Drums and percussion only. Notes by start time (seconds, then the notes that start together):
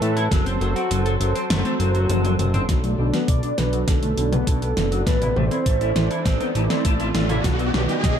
0.02 closed hi-hat
0.17 closed hi-hat
0.31 kick, snare, closed hi-hat
0.46 closed hi-hat
0.61 closed hi-hat
0.76 closed hi-hat
0.91 closed hi-hat
1.06 closed hi-hat
1.21 closed hi-hat
1.36 closed hi-hat
1.50 snare, closed hi-hat
1.65 closed hi-hat
1.80 closed hi-hat
1.95 closed hi-hat
2.10 closed hi-hat, high tom
2.25 closed hi-hat, high tom
2.39 closed hi-hat, mid tom
2.54 closed hi-hat, mid tom
2.69 kick, snare, closed hi-hat
2.84 closed hi-hat
3.14 snare, closed hi-hat
3.28 kick, closed hi-hat
3.43 closed hi-hat
3.58 snare, closed hi-hat
3.73 closed hi-hat
3.88 kick, snare, closed hi-hat
4.03 closed hi-hat
4.18 closed hi-hat
4.33 closed hi-hat, mid tom
4.47 kick, closed hi-hat
4.62 closed hi-hat
4.77 snare, closed hi-hat
4.92 closed hi-hat
5.07 kick, snare, closed hi-hat
5.22 closed hi-hat, mid tom
5.36 mid tom
5.51 closed hi-hat
5.66 kick, closed hi-hat
5.81 closed hi-hat
5.96 snare, closed hi-hat
6.11 closed hi-hat
6.25 kick, snare, closed hi-hat
6.41 closed hi-hat
6.55 closed hi-hat
6.70 snare, closed hi-hat
6.85 kick, closed hi-hat
7.00 closed hi-hat
7.15 snare, closed hi-hat
7.29 closed hi-hat, mid tom
7.44 kick, snare, closed hi-hat
7.59 closed hi-hat
7.74 snare
7.89 closed hi-hat
8.04 kick, snare, closed hi-hat